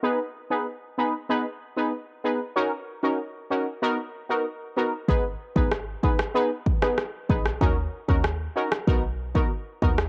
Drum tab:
SD |----------------|----------------|----r--r---rr--r|----r--r-------r|
BD |----------------|----------------|o--o--o---o---o-|o--o----o--o--o-|